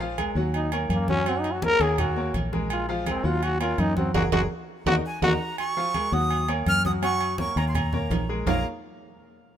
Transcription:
Already playing: A#1
0.00 F3 F4 F5, high conga
0.18 G#3 G#4 A#4, high conga, low agogo
0.35 D#2 F#3 F#4 F#5, high conga
0.54 D#4, high conga, low agogo
0.72 F#3 A#3 A#4 C#5, high conga, low agogo
0.89 F#2 A#3, high conga, low agogo
1.08 F#3 C#4 F#4 F#5, high conga
1.26 F#3 C4 F#4 F#5, high conga, low agogo
1.40 D#4
1.44 high conga, low agogo
1.52 F#4
1.62 A#3 A#4 C#5, high conga
1.80 D#2 A#3 G#4 A#4 C#5, high conga, low agogo
1.98 F#4, high conga, low conga, low agogo
2.16 A#3 A#4 C#5, high conga
2.34 A#1, high conga, low agogo
2.53 G#3 G#4 A#4, high conga
2.70 F4, high conga, low agogo
2.89 F3 G#3 F4 F5, high conga
3.06 G#3 C4 G#4 A#4, high conga, low agogo
3.24 D#2 F#3 F4 F#4 F#5, high conga
3.43 F#4, high conga, low agogo
3.60 A#3 F4 A#4 C#5, high conga, low agogo
3.78 F#2 D#4, high conga, low agogo
3.96 F#3 C4 F#4 F#5, high conga
4.14 F#1 F#4 G#4 A#4, high conga, high timbale
4.32 F#1 F#4 G#4 A#4, high conga, high timbale
4.86 D#2 D#4 F#4 A#4, high conga, high timbale
5.06 G#5
5.22 D#2 D#4 F#4 A#4 A#5, high conga, high timbale
5.58 C#6, high conga, low agogo
5.77 F3 F4 F5, high conga
5.94 G#3 G#4 A#4, high conga, low agogo
6.12 D#2 F#3 F#4 F#5 D#6
6.30 high conga, low agogo
6.48 A#3 A#4 C#5, high conga, low agogo
6.66 F#2 F6, high conga, low agogo
6.85 F#3 F#4 F#5 D#6, high conga
7.02 F#3 F#4 F#5 C#6, high conga, low agogo
7.20 high conga, low agogo
7.38 A#3 A#4 C#5 C#6, high conga
7.56 D#2 A#3 A#4 C#5 A#5, high conga, low agogo
7.68 C6
7.75 A#5, high conga, low conga, low agogo
7.93 A#3 A#4 C#5, high conga, low conga
8.10 A#1, high conga, low timbale, low agogo
8.29 G#3 G#4 A#4
8.46 A#1 A#3 F4 G#4 A#4 C#5 F5 A#5, low conga, low timbale

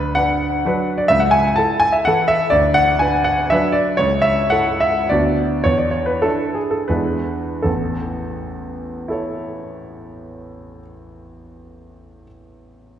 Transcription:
Already playing: D2 B4
0.15 D4 B4 F#5
0.65 F#3 D4 B4
0.98 D5
1.08 C#2 E5
1.20 F#5
1.31 G#5
1.56 E4 A4 A5
1.80 G#5
1.92 E5
2.05 E3 E4 A4 F#5
2.28 E5
2.50 D2 D5
2.74 F#5
2.99 D4 B4 G#5
3.24 F#5
3.50 F#3 D4 B4 E5
3.72 D5
3.97 C#2 C#5
4.22 E5
4.50 E4 A4 F#5
4.80 E5
5.09 D2 B3 D4 F#4 D5
5.64 E2 C#5
5.78 D5
5.91 C#5
6.06 B4
6.22 D4 E4 A4
6.55 G#4
6.71 A4
6.88 E2 G#3 D4 E4 B4
7.62 A1 E2 A4
9.08 E4 A4 C#5

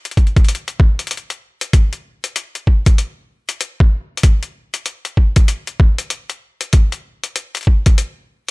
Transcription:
0.05 closed hi-hat
0.11 closed hi-hat
0.17 kick, closed hi-hat
0.27 closed hi-hat
0.36 kick, closed hi-hat
0.45 closed hi-hat
0.49 closed hi-hat
0.55 closed hi-hat
0.68 closed hi-hat
0.80 kick
0.99 closed hi-hat
1.07 closed hi-hat
1.11 closed hi-hat
1.17 closed hi-hat
1.30 closed hi-hat
1.61 closed hi-hat
1.73 kick, closed hi-hat
1.93 closed hi-hat
2.24 closed hi-hat
2.36 closed hi-hat
2.55 closed hi-hat
2.67 kick
2.86 kick, closed hi-hat
2.98 closed hi-hat
3.49 closed hi-hat
3.61 closed hi-hat
3.80 kick
4.17 closed hi-hat
4.23 kick, closed hi-hat
4.43 closed hi-hat
4.74 closed hi-hat
4.86 closed hi-hat
5.05 closed hi-hat
5.17 kick
5.36 kick, closed hi-hat
5.48 closed hi-hat
5.67 closed hi-hat
5.80 kick
5.98 closed hi-hat
6.10 closed hi-hat
6.30 closed hi-hat
6.61 closed hi-hat
6.73 kick, closed hi-hat
6.92 closed hi-hat
7.24 closed hi-hat
7.36 closed hi-hat
7.55 closed hi-hat
7.57 closed hi-hat
7.61 closed hi-hat
7.63 closed hi-hat
7.65 kick, closed hi-hat
7.86 kick, closed hi-hat
7.98 closed hi-hat

